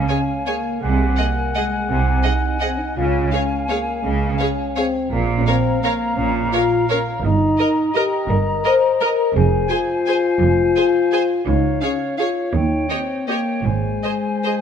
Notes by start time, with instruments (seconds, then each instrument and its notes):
Already playing: clarinet F5, flute G#5
0.07 french horn section C#4, viola section G#4, violin section C#5 G#5
0.46 french horn section A#3, viola section G#4, violin section C#5 G#5
0.82 double bass section C2, cello section C3, french horn section G#3, clarinet F#5, flute G#5
1.09 french horn section C4
1.16 french horn section A#3, viola section G#4, violin section D#5 F#5
1.54 french horn section G#3, viola section G#4, violin section D#5 F#5
1.89 double bass section C2, cello section C3, french horn section C4
2.23 french horn section D#4, viola section G#4, violin section D#5 F#5
2.60 french horn section C4, viola section G#4, violin section D#5 F#5
2.79 french horn section D#4
2.96 double bass section C#2, cello section C#3, french horn section F4, clarinet F5, flute G#5
3.31 french horn section C#4, viola section G#4, violin section C#5 F5
3.69 french horn section A#3, viola section G#4, violin section C#5 F5
4.03 double bass section C#2, cello section C#3, french horn section G#3
4.39 french horn section C#4, viola section G#4, violin section C#5 F5
4.76 french horn section C4, viola section G#4, violin section C#5 F5
5.11 double bass section A#1, cello section A#2, french horn section A#3, clarinet F5, flute A#5
5.37 french horn section C#4
5.47 french horn section C4, viola section A#4, violin section C#5 F5
5.82 french horn section A#3, viola section A#4, violin section C#5 F5
6.16 double bass section A#1, cello section A#2, french horn section C#4
6.52 french horn section F4, viola section A#4, violin section C#5 F5
6.89 french horn section C#4, viola section A#4, violin section C#5 F5
7.24 double bass section G1, cello section G2, french horn section D#4, clarinet D#5, flute A#5
7.59 viola section A#4, violin section A#4 D#5
7.95 french horn section G4, viola section A#4, violin section A#4 D#5
8.29 double bass section G1, cello section G2, french horn section A#4
8.64 viola section A#4, violin section A#4 D#5, french horn section C5
9.00 violin section A#4 D#5, viola section A#4, french horn section A#4
9.35 double bass section F1, cello section F2, french horn section G#4, clarinet C5, flute G#5
9.69 french horn section F4, viola section G#4, violin section C5 G#5
10.06 viola section G#4, violin section C5 G#5
10.40 double bass section F1, cello section F2
10.76 viola section G#4, violin section C5 G#5
11.12 viola section G#4, violin section C5 G#5
11.46 cello section C#2, double bass section C#2, french horn section D#4, clarinet C#5, flute F5
11.81 french horn section C#4, viola section G#4, clarinet C#5, violin section C#5 F5, flute F5
12.18 french horn section F4, viola section G#4, clarinet C#5, violin section C#5 F5, flute F5
12.51 cello section D#2, double bass section D#2, french horn section D#4, clarinet C#5, flute G5
12.88 french horn section C4, viola section G4, violin section C#5 D#5
13.27 french horn section A#3, viola section G4, clarinet C#5, violin section C#5 D#5, flute G5
13.64 double bass section G#1, cello section G#2, french horn section G#3, clarinet C5, flute G#5
14.03 viola section G#4, violin section C5 D#5
14.44 viola section G#4, violin section C5 D#5